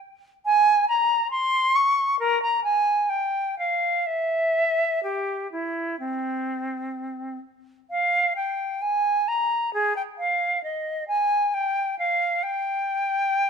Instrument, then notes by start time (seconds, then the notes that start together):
flute
0.45 G#5
0.88 A#5
1.31 C6
1.75 C#6
2.19 A#4
2.42 A#5
2.64 G#5
3.09 G5
3.59 F5
4.06 E5
5.03 G4
5.52 E4
5.99 C4
7.90 F5
8.36 G5
8.82 G#5
9.28 A#5
9.74 G#4
9.96 G5
10.18 F5
10.63 D#5
11.08 G#5
11.54 G5
11.99 F5
12.43 G5